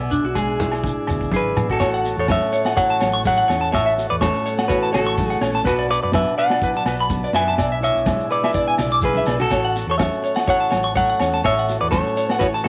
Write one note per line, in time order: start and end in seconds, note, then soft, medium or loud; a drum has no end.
0.00 0.19 B1 medium
0.00 1.06 B2 medium
0.00 0.11 B3 medium
0.00 1.77 D5 medium
0.00 1.79 E5 medium
0.00 1.79 G#5 medium
0.11 0.24 D4 medium
0.11 closed hi-hat medium
0.11 shekere loud
0.24 0.94 B1 loud
0.24 0.36 F#4 medium
0.35 1.78 G#3 medium
0.35 1.65 G#4 medium
0.35 kick medium
0.35 cross-stick medium
0.35 low agogo medium
0.35 shekere medium
0.60 2.03 E4 medium
0.60 closed hi-hat medium
0.60 muted conga soft
0.60 high conga medium
0.60 shekere loud
0.72 cross-stick medium
0.72 low agogo medium
0.72 shekere soft
0.83 1.77 D4 medium
0.83 kick loud
0.83 muted conga soft
0.83 low conga medium
0.83 shekere medium
1.07 1.29 D2 medium
1.07 1.30 B2 medium
1.07 cross-stick medium
1.07 closed hi-hat medium
1.07 muted conga soft
1.07 low agogo medium
1.07 shekere loud
1.21 kick medium
1.21 shekere soft
1.31 1.52 G#1 loud
1.31 1.56 C#3 medium
1.31 1.68 G#4 medium
1.31 kick medium
1.31 high tom medium
1.31 high conga medium
1.31 shekere medium
1.36 1.69 B4 medium
1.56 1.79 B2 medium
1.56 mid tom medium
1.56 high conga medium
1.56 low agogo medium
1.56 shekere medium
1.69 2.15 F#4 medium
1.69 2.18 A4 medium
1.69 kick medium
1.69 shekere soft
1.79 2.11 A1 loud
1.79 3.72 A2 medium
1.79 5.62 C#5 medium
1.79 1.87 C#5 loud
1.79 5.61 F#5 medium
1.79 7.54 A5 medium
1.79 kick medium
1.79 snare medium
1.79 low agogo medium
1.79 shekere medium
1.94 2.00 F#5 medium
1.94 shekere soft
2.04 2.77 F#4 medium
2.04 snare soft
2.04 shekere medium
2.17 2.37 E2 medium
2.17 2.29 A4 medium
2.17 2.29 C#5 medium
2.27 3.25 A3 medium
2.27 3.48 C#4 medium
2.27 2.74 C#5 medium
2.27 kick medium
2.27 snare medium
2.27 high conga medium
2.27 low agogo medium
2.27 shekere loud
2.32 2.75 E5 loud
2.41 shekere soft
2.52 2.60 C#5 medium
2.52 muted conga soft
2.52 shekere medium
2.65 2.72 F#5 medium
2.65 snare medium
2.65 low agogo medium
2.77 3.71 E3 medium
2.77 3.98 F#4 medium
2.77 3.22 C#5 medium
2.77 2.84 C#5 medium
2.77 3.22 F#5 loud
2.77 kick loud
2.77 snare soft
2.77 muted conga soft
2.77 shekere loud
2.89 2.96 A5 medium
2.89 shekere soft
3.00 3.42 A1 medium
3.00 3.08 C#5 medium
3.00 snare medium
3.00 muted conga soft
3.00 high conga medium
3.00 low agogo medium
3.00 shekere medium
3.13 3.20 C#6 medium
3.13 shekere soft
3.25 4.22 A3 medium
3.25 3.71 C#5 medium
3.25 3.74 F#5 loud
3.25 kick loud
3.25 snare soft
3.25 high conga medium
3.25 shekere medium
3.38 3.44 F#5 medium
3.38 shekere soft
3.48 3.69 E2 medium
3.48 3.71 C#4 medium
3.48 3.56 C#5 medium
3.48 snare medium
3.48 low agogo medium
3.48 shekere medium
3.61 3.68 A5 medium
3.61 shekere soft
3.72 4.04 A1 loud
3.72 5.65 A2 medium
3.72 3.80 C#5 medium
3.72 4.09 C#5 medium
3.72 4.08 E5 loud
3.72 kick medium
3.72 snare medium
3.72 muted conga soft
3.72 low agogo medium
3.72 shekere loud
3.86 3.92 E5 medium
3.86 shekere soft
3.98 4.71 F#4 medium
3.98 snare soft
3.98 shekere medium
4.10 4.31 E2 medium
4.10 4.15 B4 medium
4.10 4.15 D5 medium
4.21 5.18 A3 medium
4.21 5.43 C#4 medium
4.21 4.66 A4 medium
4.21 4.71 C#5 medium
4.21 kick medium
4.21 snare medium
4.21 high conga medium
4.21 low agogo medium
4.21 shekere loud
4.35 shekere soft
4.46 4.53 C#5 medium
4.46 muted conga soft
4.46 shekere medium
4.58 4.65 F#5 medium
4.58 snare medium
4.58 low agogo medium
4.68 5.64 E3 medium
4.68 4.92 F#4 medium
4.68 5.64 F#4 medium
4.68 4.91 B4 medium
4.68 4.77 C#5 medium
4.68 kick loud
4.68 snare soft
4.68 muted conga soft
4.68 shekere medium
4.83 4.89 A5 medium
4.83 shekere soft
4.93 5.34 A1 medium
4.93 5.39 F#4 medium
4.93 5.27 A4 medium
4.93 5.00 C#5 medium
4.93 snare medium
4.93 low conga medium
4.93 low agogo medium
4.93 shekere medium
5.07 5.13 C#6 medium
5.07 shekere soft
5.17 5.64 A3 medium
5.17 kick loud
5.17 snare soft
5.17 high conga medium
5.17 shekere loud
5.27 5.39 G#4 medium
5.27 5.37 F#5 medium
5.32 shekere soft
5.41 5.62 A#1 medium
5.41 5.64 C#4 medium
5.41 5.49 C#5 medium
5.41 snare medium
5.41 low agogo medium
5.41 shekere medium
5.54 5.61 A5 medium
5.54 snare soft
5.54 shekere soft
5.64 5.97 B1 medium
5.64 7.56 B2 medium
5.64 9.48 D4 medium
5.64 5.89 F#4 medium
5.64 5.73 B4 medium
5.64 7.57 B4 medium
5.64 5.89 B4 medium
5.64 kick medium
5.64 snare medium
5.64 muted conga soft
5.64 low agogo medium
5.64 shekere medium
5.79 5.85 D5 medium
5.79 shekere soft
5.90 6.61 F#4 medium
5.90 6.01 B4 medium
5.90 6.02 D5 loud
5.90 shekere medium
6.03 6.24 F#2 medium
6.03 6.13 B4 medium
6.03 6.13 D5 medium
6.12 7.08 B3 medium
6.12 7.33 D4 medium
6.12 6.37 B4 medium
6.12 6.38 E5 medium
6.12 kick medium
6.12 snare medium
6.12 high conga loud
6.12 low agogo medium
6.12 shekere medium
6.27 shekere soft
6.38 6.46 B4 medium
6.38 7.30 D5 medium
6.38 7.31 F#5 loud
6.38 muted conga soft
6.38 shekere medium
6.50 6.58 D5 medium
6.50 snare medium
6.50 low agogo medium
6.62 7.56 F#3 medium
6.62 6.75 E4 medium
6.62 6.70 B4 medium
6.62 kick loud
6.62 muted conga soft
6.62 shekere medium
6.75 7.59 F#4 medium
6.75 6.83 A5 medium
6.75 shekere soft
6.86 7.26 B1 loud
6.86 6.95 B4 medium
6.86 snare medium
6.86 muted conga soft
6.86 low agogo medium
6.86 shekere medium
7.00 7.06 B5 medium
7.00 shekere soft
7.09 7.55 B3 medium
7.09 kick loud
7.09 snare soft
7.09 high conga medium
7.09 shekere loud
7.24 7.30 D5 medium
7.24 shekere soft
7.33 7.54 F#2 medium
7.33 7.56 D4 medium
7.33 7.42 B4 medium
7.33 7.79 E5 medium
7.33 7.84 G#5 loud
7.33 snare medium
7.33 low agogo medium
7.33 shekere medium
7.48 7.54 A5 medium
7.48 snare soft
7.48 shekere soft
7.57 7.89 B1 loud
7.57 8.52 B2 medium
7.57 7.66 D5 medium
7.57 9.50 E5 medium
7.57 9.50 G#5 medium
7.57 kick medium
7.57 snare medium
7.57 muted conga soft
7.57 low agogo medium
7.57 shekere loud
7.72 7.78 E5 medium
7.80 8.54 E4 medium
7.80 8.28 C#5 medium
7.80 8.32 E5 loud
7.80 snare soft
7.80 shekere medium
7.95 8.16 B1 medium
7.95 shekere soft
8.06 9.48 G#3 medium
8.06 9.49 D4 medium
8.06 kick medium
8.06 snare medium
8.06 high conga loud
8.06 low agogo medium
8.06 shekere medium
8.20 shekere soft
8.30 8.76 B4 medium
8.30 8.76 D5 medium
8.30 muted clean electric guitar stroke medium
8.30 muted conga soft
8.30 shekere medium
8.44 8.50 E5 medium
8.44 snare medium
8.44 low agogo medium
8.53 9.02 B2 medium
8.53 9.75 E4 medium
8.53 8.62 D5 loud
8.53 kick loud
8.53 muted conga soft
8.53 shekere medium
8.67 8.74 G#5 medium
8.67 shekere soft
8.78 9.20 B1 medium
8.78 8.86 D5 medium
8.78 snare medium
8.78 muted conga soft
8.78 low conga medium
8.78 low agogo medium
8.78 shekere medium
8.92 8.98 D6 medium
8.92 shekere soft
9.01 9.26 C#3 medium
9.01 9.38 G#4 medium
9.01 kick loud
9.01 snare soft
9.01 high conga medium
9.01 shekere loud
9.05 9.39 B4 loud
9.15 9.23 E5 medium
9.15 high conga medium
9.15 shekere soft
9.25 9.47 B1 medium
9.25 9.50 B2 medium
9.25 9.35 D5 medium
9.25 snare medium
9.25 low conga medium
9.25 low agogo medium
9.25 shekere medium
9.40 9.85 F#4 medium
9.40 9.88 A4 medium
9.40 muted clean electric guitar stroke medium
9.40 snare soft
9.40 low conga medium
9.40 shekere soft
9.50 9.83 A1 medium
9.50 9.59 C#5 medium
9.50 12.68 C#5 medium
9.50 12.68 F#5 medium
9.50 12.68 A5 medium
9.50 muted nylon-string guitar stroke medium
9.50 kick medium
9.50 snare medium
9.50 muted conga soft
9.50 low agogo medium
9.50 shekere medium
9.65 9.71 F#5 medium
9.65 shekere soft
9.75 10.46 F#4 medium
9.75 snare soft
9.75 shekere medium
9.87 10.08 E2 medium
9.87 9.94 A4 medium
9.91 9.96 C#5 medium
9.97 10.95 A3 medium
9.97 11.20 C#4 medium
9.97 10.44 C#5 medium
9.97 10.49 E5 medium
9.97 kick medium
9.97 snare medium
9.97 high conga loud
9.97 low agogo medium
9.97 shekere medium
10.13 shekere soft
10.24 10.31 C#5 medium
10.24 muted conga soft
10.24 shekere medium
10.36 10.42 F#5 medium
10.36 snare medium
10.36 low agogo medium
10.46 11.41 E3 medium
10.46 11.69 F#4 medium
10.46 10.55 C#5 loud
10.46 10.93 C#5 medium
10.46 kick loud
10.46 snare soft
10.46 muted conga soft
10.46 shekere medium
10.50 10.94 F#5 loud
10.60 10.67 A5 medium
10.60 shekere soft
10.71 11.12 A1 medium
10.71 10.78 C#5 medium
10.71 snare medium
10.71 high conga medium
10.71 low agogo medium
10.71 shekere medium
10.84 10.91 C#6 medium
10.84 shekere soft
10.95 11.91 A3 medium
10.95 11.41 C#5 medium
10.95 11.41 F#5 loud
10.95 kick loud
10.95 high conga medium
10.95 shekere medium
11.10 11.16 F#5 medium
11.10 shekere soft
11.20 11.41 E2 medium
11.20 11.42 C#4 medium
11.20 11.28 C#5 medium
11.20 snare medium
11.20 low agogo medium
11.20 shekere medium
11.34 11.40 A5 medium
11.34 snare soft
11.34 shekere soft
11.43 11.76 A1 medium
11.43 12.68 A2 medium
11.43 11.79 C#5 medium
11.43 11.52 C#5 loud
11.43 11.80 E5 loud
11.43 kick medium
11.43 snare medium
11.43 muted conga soft
11.43 low agogo medium
11.43 shekere medium
11.57 11.65 F#5 medium
11.57 shekere soft
11.69 12.41 F#4 medium
11.69 snare soft
11.69 shekere medium
11.81 12.02 E2 medium
11.81 11.90 B4 medium
11.81 11.91 D5 medium
11.91 12.68 A3 medium
11.91 12.68 C#4 medium
11.91 12.37 A4 medium
11.91 12.42 C#5 medium
11.91 kick loud
11.91 snare medium
11.91 high conga loud
11.91 low agogo medium
11.91 shekere medium
12.06 shekere soft
12.17 12.25 C#5 medium
12.17 muted conga soft
12.17 shekere medium
12.29 12.37 F#5 medium
12.29 snare medium
12.29 low agogo medium
12.39 12.68 E3 medium
12.39 12.54 E4 medium
12.39 12.46 F#4 medium
12.39 12.46 B4 loud
12.39 12.48 C#5 loud
12.39 kick loud
12.39 muted conga soft
12.39 shekere medium
12.54 12.68 F#4 medium
12.54 12.61 A5 medium
12.54 shekere soft
12.64 12.68 F#4 medium
12.64 12.68 A4 medium
12.64 muted clean electric guitar stroke medium